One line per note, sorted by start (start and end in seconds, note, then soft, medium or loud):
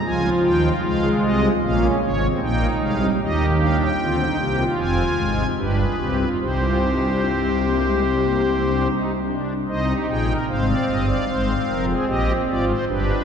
0.05 0.29 C#2 medium
0.05 0.29 C#3 medium
0.05 0.73 F3 medium
0.05 1.41 F4 medium
0.05 0.29 G#5 medium
0.44 0.69 D#2 medium
0.44 0.69 D#3 medium
0.44 0.69 G5 medium
0.84 1.09 C#2 medium
0.84 1.08 C#3 medium
0.84 1.52 G#3 medium
0.84 1.08 F5 medium
1.23 1.48 C2 medium
1.23 1.48 C3 medium
1.23 1.48 D#5 medium
1.63 1.87 A#1 medium
1.63 1.87 A#2 medium
1.63 1.87 A#3 medium
1.63 2.01 C#4 medium
1.63 1.87 F5 medium
2.03 2.27 G#1 medium
2.03 2.27 G#2 medium
2.03 2.19 C#4 medium
2.03 2.27 C#5 medium
2.23 2.39 C4 medium
2.43 2.67 A#1 medium
2.43 2.67 A#2 medium
2.43 2.67 A#3 medium
2.43 3.10 D#4 medium
2.43 2.67 G5 medium
2.82 3.06 C2 medium
2.82 3.06 C3 medium
2.82 2.99 G#3 medium
2.82 3.06 F5 medium
3.02 3.18 G3 medium
3.21 3.89 D#2 medium
3.21 3.89 D#3 medium
3.21 3.45 D#4 medium
3.21 3.88 G4 medium
3.21 3.45 D#5 medium
3.60 3.84 D4 medium
3.60 3.77 F5 medium
3.80 4.65 G5 medium
4.00 4.24 D2 medium
4.00 4.24 D3 medium
4.00 4.24 C4 medium
4.00 4.17 F4 medium
4.20 4.36 D#4 medium
4.39 4.64 C2 medium
4.39 4.63 C3 medium
4.39 4.63 A#3 medium
4.39 4.56 G4 medium
4.59 5.44 F4 medium
4.78 5.03 F1 medium
4.78 5.03 F2 medium
4.78 5.03 C4 medium
4.78 5.47 G#5 medium
5.18 5.43 G#1 medium
5.18 5.43 G#2 medium
5.18 5.43 G#3 medium
5.58 5.84 G1 medium
5.58 5.84 G2 medium
5.58 5.84 D4 medium
5.58 5.76 G4 medium
5.58 6.29 B4 medium
5.79 5.96 G#4 medium
5.98 6.24 C2 medium
5.98 6.24 C3 medium
5.98 6.24 C4 medium
5.98 6.16 G4 medium
6.20 6.38 F4 medium
6.40 8.87 C2 medium
6.40 8.87 C3 medium
6.40 6.58 D#4 medium
6.40 8.88 G4 medium
6.40 8.88 C5 medium
6.61 6.79 F4 medium
6.82 6.99 D#4 medium
7.02 7.20 D4 medium
7.23 7.49 C4 medium
7.64 7.81 A#3 medium
7.84 8.02 G#3 soft
8.03 8.21 G3 medium
8.25 8.42 A#3 medium
8.45 8.63 C4 soft
8.66 8.83 D4 medium
8.86 9.11 D#4 medium
9.28 9.53 D4 medium
9.68 9.93 C2 medium
9.68 9.93 C3 medium
9.68 10.37 D#4 medium
9.68 9.85 C5 medium
9.68 9.93 D#5 medium
9.89 10.06 G4 medium
10.09 10.33 A#1 medium
10.09 10.34 A#2 medium
10.09 10.26 G#4 medium
10.09 10.33 G5 medium
10.29 10.46 A#4 medium
10.48 10.73 G#1 medium
10.48 10.73 G#2 medium
10.48 11.17 C4 medium
10.48 10.65 C5 medium
10.48 11.85 F5 medium
10.68 10.85 D5 medium
10.88 11.13 G1 medium
10.88 11.13 G2 medium
10.88 11.05 D#5 medium
11.07 11.25 D5 medium
11.28 11.53 G#1 medium
11.28 11.53 G#2 medium
11.28 12.65 C4 medium
11.28 11.53 C5 medium
11.68 11.93 F1 medium
11.68 11.93 F2 medium
11.68 11.85 A#4 medium
11.88 12.05 G#4 medium
12.07 12.32 A#1 medium
12.07 12.32 A#2 medium
12.07 12.32 G4 medium
12.07 12.32 D#5 medium
12.48 12.72 G#1 medium
12.48 12.72 G#2 medium
12.48 12.72 F4 medium
12.48 12.65 D5 medium
12.67 12.85 C5 medium
12.87 13.12 G1 medium
12.87 13.12 G2 medium
12.87 13.24 D4 medium
12.87 13.12 G4 medium
12.87 13.24 B4 medium